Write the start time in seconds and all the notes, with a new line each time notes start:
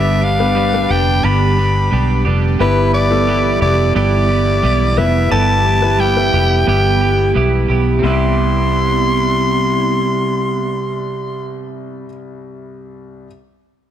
Already playing: G1 G2 D3 G3 B3 D4 G4 B4 E5
0.21 G3 B3 D4 G4 F5
0.40 G3 B3 D4 B4
0.55 G3 B3 D4 G4
0.74 G3 B3 D4 B4
0.89 F1 G3 B3 D4 G4 G5
1.23 G1 G2 D3 G3 B3 D4 G4 B5
1.57 G3 B3 D4 G4
1.91 B1 G3 B3 D4 G4
2.25 F1 G3 B3 D4 G4
2.59 G1 G2 E3 G3 B3 E4 G4 B4
2.93 B3 E4 G4 D5
3.11 G3 B3 E4 A4
3.27 G3 B3 E4 G4
3.61 F1 B3 E4 G4 D5
3.95 G1 G3 B3 E4 G4 D5
4.29 B3 E4 G4
4.63 B1 G3 B3 E4 G4
4.97 F1 G3 B3 E4 G4 B4 E5
5.31 G1 G2 G3 B3 E4 G4 A4 A5
5.64 B3 E4 G4
5.82 G3 B3 E4 B4
5.98 G3 B3 E4 G4 G5
6.17 G3 B3 E4 B4
6.33 F1 B3 E4 G4
6.67 G1 G3 B3 E4 G4 G5
7.01 B3 E4 G4
7.34 B1 G3 B3 E4 G4
7.68 B1 B3 E4 G4
7.99 C3 G3
8.03 C2 C3 G3 B3 E4 E5 C6
8.10 E4 G4